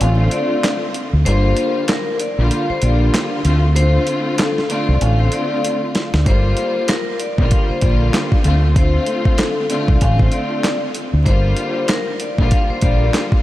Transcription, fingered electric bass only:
0.01 A1
1.13 D2
1.26 G1
2.38 A#1
2.70 muted fingered electric bass stroke
2.82 A#1
3.45 D2
4.88 C2
5.01 A1
6.13 D2
6.26 G1
7.38 A#1
7.70 muted fingered electric bass stroke
7.82 A#1
8.45 D2
9.88 C2
10.02 A1
11.13 D2
11.26 G1
12.38 A#1
12.70 muted fingered electric bass stroke
12.83 A#1

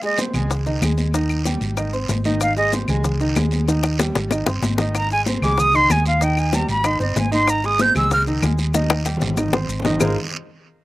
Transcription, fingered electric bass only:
0.34 C#2
0.82 D#2
1.61 G#1
2.09 G#1
2.88 C#2
3.36 D#2
4.16 G#1
4.47 G1
4.62 G#1
5.42 C#2
5.90 D#2
6.69 G#1
7.00 G1
7.16 G#1
7.95 C#2
8.42 D#2
9.22 G#1
9.69 G#1
10.01 G#1

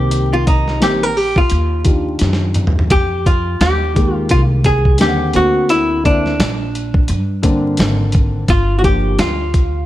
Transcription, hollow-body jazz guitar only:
Already playing: G4
0.33 F4
0.48 D#4
0.83 G4
1.03 A#4
1.17 G4
1.38 F4
2.91 G4
3.27 F4
3.61 G4
4.14 F4
4.31 F4
4.66 G#4
5.01 G4
5.36 F#4
5.70 E4
6.06 D4
8.50 F4
8.79 F#4
8.85 G4
9.20 F4

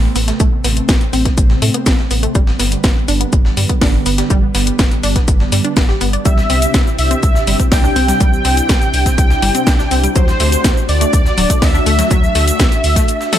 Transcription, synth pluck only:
0.16 B3
0.28 A3
0.40 A3
0.64 B3
1.13 C4
1.25 B3
1.62 A3
1.74 B3
1.86 C4
2.11 B3
2.23 A3
2.35 G3
2.60 B3
3.08 D4
3.21 B3
3.57 G3
3.69 B3
3.82 D4
4.06 B3
4.18 G3
4.30 G3
4.55 B3
5.04 D4
5.16 B3
5.52 G3
5.65 D4
5.77 B3
5.89 G4
6.01 B3
6.13 D5
6.25 G3
6.50 C4
7.11 C4
7.47 G3
7.60 C4
7.72 D4
7.84 D4
7.96 C4
8.08 G3
8.20 G3
8.45 C4
9.06 C4
9.42 G3
9.55 C4
9.67 D4
9.79 D4
9.91 C4
10.04 G3
10.16 F#3
10.40 A3
11.01 A3
11.38 F#3
11.50 A3
11.62 D4
11.74 D4
11.86 A3
11.99 F#3
12.11 F#3
12.35 A3
12.96 A3
13.33 A4

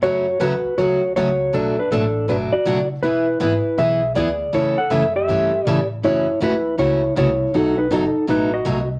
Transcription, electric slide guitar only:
0.03 F#4 C#5
0.40 F#4 B4
0.78 F#4 C#5
1.16 F#4 C#5
1.54 D4 A4
1.79 D4 B4
1.92 D4 A4
2.29 D4 B4
2.53 F#4 D5
3.03 E4 B4
3.42 E4 B4
3.79 G#4 E5
4.16 G#4 D5
4.55 E4 C#5
4.78 A4 F#5
4.91 A4 E5
5.16 G4 E5
5.68 D5
6.04 E4 C#5
6.43 E4 B4
6.78 E4 C#5
7.17 E4 C#5
7.55 D#4 A4
7.78 D#4 B4
7.91 D#4 A4
8.30 D#4 B4
8.53 F#4 D#5

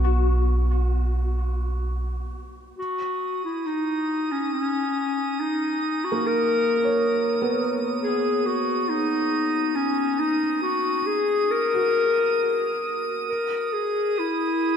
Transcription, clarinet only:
2.79 F#4
3.45 E4
3.66 D#4
4.32 C#4
4.53 C#4
5.40 D#4
6.04 F#4
6.27 A#4
8.02 G#4
8.46 F#4
8.89 D#4
9.76 C#4
10.19 D#4
10.62 F#4
11.06 G#4
11.51 A#4
13.29 A#4
13.73 G#4
14.19 E4

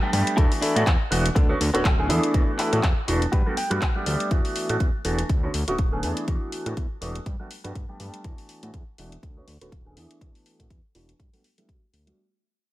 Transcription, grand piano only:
0.02 G3 A3 B3 D4 G4
0.13 G3 A3 B3 D4 G4
0.37 E3 A3 B3 D4 F#4
0.75 E3 A3 B3 D4 F#4
1.11 E3 A3 B3 D4 F#4
1.49 D3 A3 B3 C#4 F#4
1.74 D3 A3 B3 C#4 F#4
1.98 D3 A3 B3 C#4 G#4
2.09 E3 A3 B3 D4 G#4
2.34 E3 A3 B3 D4 F#4
2.72 E3 A3 B3 D4 F#4
3.08 E3 A3 B3 D4 F#4
3.46 G3 A3 B3 D4 F#4
3.71 G3 A3 B3 D4 F#4
3.95 G3 A3 B3 D4 G4
4.06 G3 A3 B3 D4 G4
4.31 E3 F#4
4.69 E3 A3 B3 D4 F#4
5.05 E3 A3 B3 D4 F#4
5.43 D3 A3 B3 C#4 F#4
5.67 D3 A3 B3 C#4 F#4
5.92 D3 A3 B3 C#4 G#4
6.03 E3 A3 B3 D4 G#4
6.66 E3 A3 B3 D4 F#4
7.01 E3 A3 B3 D4 F#4
7.39 G3 A3 B3 D4 F#4
7.64 G3 A3 B3 D4 F#4
7.89 G3 A3 B3 D4 G4
8.00 G3 A3 B3 D4 G4
8.24 E3 A3 B3
8.63 E3 A3 B3 D4 F#4
8.98 E3 A3 B3 D4 F#4
9.37 D3 A3 B3 C#4 F#4
9.61 D3 A3 B3 C#4 F#4
9.86 D3 A3 B3 C#4 G#4
9.96 E3 A3 B3 D4 G#4
10.21 E3 A3 B3 D4 F#4
10.59 E3 A3 B3 D4 F#4
10.95 E3 A3 B3 D4 F#4
11.33 G3 A3 B3 D4 F#4
11.58 G3 A3 B3 D4 E4
11.68 G3
12.07 G3 A3 B3 D4 F#4

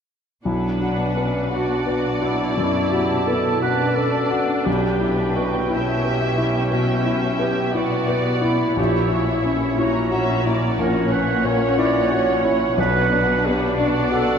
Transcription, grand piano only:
0.45 B1
0.82 F#4
1.17 B3
1.50 F#4
1.86 B4
2.21 F#4
2.57 F#2
2.92 F#4
3.28 B3
3.62 F#4
3.96 B4
4.31 F#4
4.66 B1
5.01 E4
5.37 B3
5.70 E4
6.04 B4
6.38 E4
6.71 B2
7.06 E4
7.39 B3
7.75 E4
8.08 B4
8.41 E4
8.76 A#1
9.09 E4
9.44 C#4
9.78 E4
10.11 F#4
10.46 E4
10.78 A#1
11.12 C#4
11.44 A#2
11.78 E4
12.12 F#4
12.45 E4
12.78 B1
13.12 D4
13.47 B3
13.79 D4
14.11 F#4

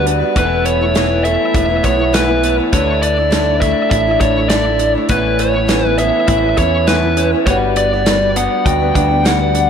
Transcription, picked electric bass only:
Already playing: D2
0.36 E1
1.54 E1
1.84 B1
2.73 D2
3.91 A1
4.20 A1
5.09 A1
6.28 A1
6.58 E2
7.46 G1
8.66 D2
8.95 D2

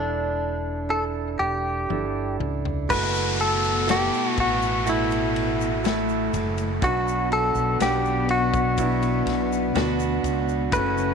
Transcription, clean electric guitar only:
Already playing: D4
0.90 A4
1.39 G4
2.90 B4
3.41 A4
3.91 G4
4.28 F#4
4.40 F#4
4.89 E4
6.84 F#4
7.33 A4
7.82 G4
8.31 F#4
10.73 B4

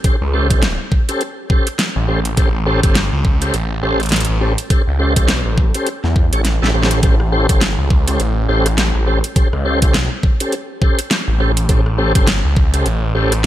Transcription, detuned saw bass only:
0.21 C#2
1.96 A1
2.37 A1
2.84 G1
3.12 C#2
3.54 A1
3.83 A1
4.29 A1
4.87 C#2
5.46 A1
6.04 E2
6.33 A1
6.62 A1
6.74 A1
7.03 A1
7.49 G1
7.78 C#2
8.20 A1
8.49 A1
8.95 A1
9.53 C#2
9.92 C2
11.28 A1
11.69 A1
12.15 G1
12.44 C#2
12.86 A1
13.15 A1

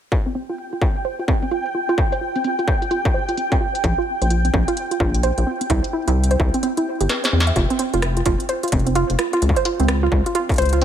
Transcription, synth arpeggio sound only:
0.12 F4
0.26 C4
0.35 C4
0.49 F4
0.73 F4
0.82 F4
1.05 C5
1.19 F4
1.28 C4
1.43 C4
1.51 F4
1.75 F4
1.89 F4
2.12 C5
2.21 F4
2.36 C4
2.44 C4
2.59 F4
2.82 F4
2.91 F4
3.14 C5
3.29 F4
3.37 C4
3.52 C4
3.61 F4
3.84 F4
3.98 F4
4.22 C5
4.30 F4
4.45 C4
4.54 C4
4.68 F4
4.91 F4
5.00 F4
5.23 C5
5.38 F4
5.47 C4
5.61 C4
5.70 E4
5.93 E4
6.08 E4
6.31 C5
6.40 E4
6.54 C4
6.63 C4
6.77 E4
7.01 G4
7.10 B4
7.24 C5
7.33 C4
7.47 E5
7.56 F4
7.70 C4
7.79 C4
7.94 F4
8.17 F4
8.26 F4
8.49 C5
8.63 F4
8.72 C4
8.87 C4
8.95 F4
9.19 F4
9.33 F4
9.57 C5
9.65 F4
9.80 C4
9.89 C4
10.03 F4
10.26 F4
10.35 F4
10.58 C5
10.73 F4

